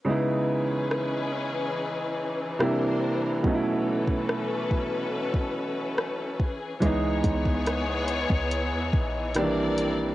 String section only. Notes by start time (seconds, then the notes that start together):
0.06 E3 C#4 G#4 B4
2.59 D4 A#4 C5
3.44 C#4 A4 B4
6.39 G#4
6.81 E3 B3 G#4 C#5
9.35 C4 A#4 D5